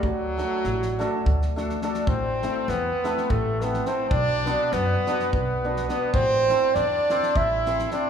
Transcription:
<<
  \new Staff \with { instrumentName = "Clarinet" } { \time 7/8 \key a \dorian \tempo 4 = 103 fis'2~ fis'8 r8 d''8 | c''4 b'4 a'8 b'8 c''8 | d''4 b'4 b'4 b'8 | c''4 d''4 e''4 d''8 | }
  \new Staff \with { instrumentName = "Hammered dulcimer" } { \time 7/8 \key a \dorian r8 <a d' fis' a'>8 r8 <a d' fis' a'>8 r8 <a d' fis' a'>8 <a d' fis' a'>8 | r8 <a c' e' a'>8 r8 <a c' e' a'>8 r8 <a c' e' a'>8 <a c' e' a'>8 | r8 <b d' fis' b'>8 r8 <b d' fis' b'>8 r8 <b d' fis' b'>8 <b d' fis' b'>8 | r8 <c' e' a' c''>8 r8 <c' e' a' c''>8 r8 <c' e' a' c''>8 <c' e' a' c''>8 | }
  \new Staff \with { instrumentName = "Trumpet" } { \time 7/8 \key a \dorian fis2~ fis8 r8 d'8 | c'4 b4 a8 b8 c'8 | d'4 b4 b4 b8 | c'4 d'4 e'4 d'8 | }
  \new Staff \with { instrumentName = "Upright bass" } { \clef bass \time 7/8 \key a \dorian d,4 a,,4 d,4. | a,,4 e,8 r8 a,,4. | b,,4 fis,8 r8 b,,4. | a,,4 e,8 r8 a,,4. | }
  \new DrumStaff \with { instrumentName = "Drums" } \drummode { \time 7/8 bd8 sn8 sn16 sn16 sn8 bd16 sn16 sn16 sn16 sn16 sn16 | bd8 sn8 sn8 sn16 sn16 bd8 sn16 sn16 sn8 | bd8 sn8 sn8 sn16 sn16 bd8. sn16 sn8 | bd8 sn8 sn8 sn16 sn16 bd8 sn16 sn16 sn8 | }
>>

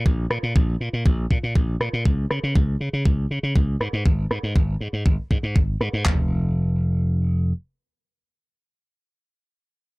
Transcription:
<<
  \new Staff \with { instrumentName = "Slap bass" } { \clef bass \time 4/4 \key f \minor \tempo 4 = 120 bes,,8 bes,16 bes,16 bes,,8 bes,16 bes,16 bes,,8 bes,16 bes,16 bes,,8 bes,16 bes,16 | des,8 des16 des16 des,8 des16 des16 des,8 des16 des16 des,8 aes,16 aes,16 | aes,,8 aes,16 aes,16 aes,,8 aes,16 aes,16 aes,,16 r16 aes,16 aes,16 aes,,8 aes,16 aes,16 | f,,2. r4 |
r1 | }
  \new DrumStaff \with { instrumentName = "Drums" } \drummode { \time 4/4 bd8 ss8 bd4 bd8 bd8 bd8 ss8 | bd8 ss8 bd4 bd4 bd8 ss8 | bd8 ss8 bd4 bd8 bd8 bd8 ss8 | <hc bd tomfh>4 r4 r4 r4 |
r4 r4 r4 r4 | }
>>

